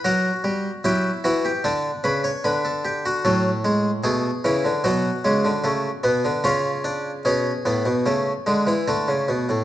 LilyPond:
<<
  \new Staff \with { instrumentName = "Harpsichord" } { \time 4/4 \key b \minor \tempo 4 = 75 ais'4 g'8 fis'16 g'16 a'8 b'16 cis''16 b'16 a'16 g'16 fis'16 | a'4 gis'4 fis'2 | eis'4 gis'2 a'4 | }
  \new Staff \with { instrumentName = "Harpsichord" } { \clef bass \time 4/4 \key b \minor << { fis'4 e'4 d'2 | fis8 gis8 a8 e8 fis8 gis8 a8 b8 | cis'8 d'8 cis'8 b8 a8 gis8 a4 | } \\ { fis8 g8 fis8 e8 d8 cis8 d4 | a,4 b,8 cis16 d16 b,8 cis16 d16 cis8 b,16 d16 | cis4 b,8 a,16 b,16 cis8 d16 e16 d16 cis16 b,16 a,16 | } >> }
>>